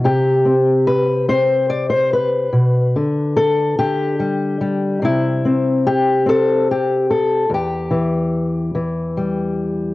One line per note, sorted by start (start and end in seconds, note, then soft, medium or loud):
0.04 2.49 C3 medium
0.04 1.71 G4 medium
0.45 1.27 C4 medium
0.87 1.28 B4 medium
1.28 2.49 C4 medium
1.28 1.69 C5 loud
1.70 1.89 D5 medium
1.90 2.12 C5 loud
2.13 3.79 B4 medium
2.53 2.95 B2 medium
2.96 3.78 D3 medium
3.37 3.78 A4 loud
3.79 5.02 D3 medium
3.79 5.02 G4 loud
4.20 4.61 G3 soft
4.61 5.04 G3 soft
5.02 7.44 C3 medium
5.02 5.43 C4 soft
5.02 6.68 E4 medium
5.45 6.25 C4 medium
5.87 6.27 G4 loud
6.26 7.45 C4 medium
6.26 6.69 A4 loud
6.71 7.10 G4 medium
7.11 7.51 A4 medium
7.50 9.94 E2 medium
7.54 9.94 G4 medium
7.91 8.74 E3 medium
8.75 9.94 E3 medium
9.17 9.94 G3 soft